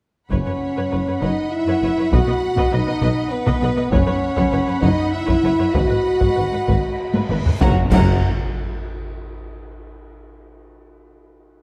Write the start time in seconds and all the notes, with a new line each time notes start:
0.30 F#1 F#2 C#4 B4 C#5 F#5 B5, taiko
0.47 F#2 B4 C#5
0.77 F#2 B4 C#5
0.91 F#1 F#2 B4 C#5
1.07 F#2 B4 C#5
1.21 F#1 F#2 D#4 B4 C#5 D#5
1.51 E4 E5
1.66 F#2 B4 C#5
1.82 F#1 F#2 B4 C#5
1.97 F#2 B4 C#5
2.12 B1 B2 F#4 B4 D#5 F#5, taiko
2.27 B2 B4 D#5
2.57 B2 B4 D#5, taiko
2.72 B1 B2 D#4 B4 D#5
2.87 B2 B4 D#5
3.01 B1 B2 B4 D#5, taiko
3.31 B3 B4
3.46 B2 B4 D#5, taiko
3.62 B1 B2 B4 D#5
3.77 B2 B4 D#5
3.91 F#1 F#2 C#4 B4 C#5 F#5 B5, taiko
4.07 F#2 B4 C#5
4.36 F#2 B4 C#5, taiko
4.52 F#1 F#2 B4 C#5
4.67 F#2 B4 C#5
4.81 F#1 F#2 D#4 B4 C#5 D#5, taiko
5.13 E4 E5
5.27 F#2 B4 C#5, taiko
5.43 F#1 F#2 B4 C#5
5.59 F#2 B4 C#5
5.73 G#1 G#2 F#4 B4 D#5 F#5, taiko, reverse cymbal
5.89 G#2 B4
6.20 G#2 B4, taiko
6.35 G#1 G#2 B4
6.52 G#2 B4
6.67 G#1 G#2 B4, taiko
7.14 G#2 B4, taiko high
7.29 G#1 G#2 B4, taiko low-mid
7.44 G#2 B4, taiko low
7.60 F#1 F#2 C#4 F#4 F#5 A#5, concert bass drum, snare, taiko, impact
7.90 F#1 F#2 C#4 F#4 F#5 A#5, concert bass drum, taiko, crash